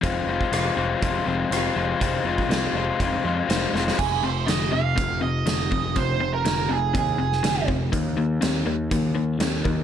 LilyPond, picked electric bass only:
\new Staff \with { instrumentName = "Picked electric bass" } { \clef bass \time 4/4 \key f \minor \tempo 4 = 122 f,,8 f,,8 f,,8 f,,8 f,,8 f,,8 f,,8 f,,8 | f,,8 f,,8 c,8 f,,8 f,,8 f,8 f,,8 f,,8 | f,,8 f,,8 f,,8 f,,8 f,,4 f,,8 f,,8 | f,,8 f,,8 f,,8 f,,8 ees,8 f,,8 f,,8 f,,8 |
ees,8 ees,8 ees,8 ees,8 ees,4 ees,8 ees,8 | }